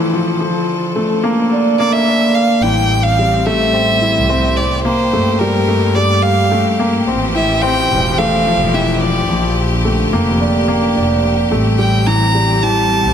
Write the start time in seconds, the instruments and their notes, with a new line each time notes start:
Already playing: felt piano E3 F3 A3 C4 E4, string section F3 E4 A4
0.13 felt piano F3
0.40 double bass section A#1, string section D3, felt piano F3
0.95 felt piano A3
1.23 felt piano A#3
1.52 felt piano D4
1.78 double bass section A#1, felt piano A#3, violin D5
1.93 violin E5
2.08 felt piano D4
2.35 violin F5
2.61 double bass section A1, felt piano E3, string section G3 C4 G4, violin G5
3.03 violin F5
3.19 felt piano G3
3.46 felt piano A3, violin E5
3.74 felt piano C4
4.02 felt piano E4
4.15 double bass section C2
4.29 felt piano C4
4.57 violin D5
4.83 string section G3, felt piano A#3, violin C5
5.12 double bass section G2, felt piano A3
5.39 felt piano G3, violin A#4
5.68 felt piano A3
5.95 felt piano G3, violin D5
6.22 violin F5
6.51 felt piano A3
6.79 felt piano A#3
7.06 double bass section A1, string section E3 F3, felt piano C4
7.34 felt piano E4, violin E5
7.62 felt piano C4, violin G5
7.89 double bass section E1
8.18 felt piano A3, violin F5
8.46 felt piano F3
8.58 double bass section E1
8.74 felt piano E3, violin E5
8.94 violin E5
9.01 felt piano F3, violin D5
9.28 double bass section A#1, string section D3, felt piano F3
9.85 felt piano A3
10.11 double bass section F1, felt piano A#3
10.26 double bass section F1
10.40 felt piano D4
10.68 felt piano A#3
10.95 double bass section F1, felt piano D4
11.49 double bass section A1, string section G3 C4, felt piano A3
11.79 felt piano G3, violin G5
12.06 felt piano E3, violin A#5
12.35 felt piano G3
12.62 felt piano E3, violin A5
13.04 double bass section C2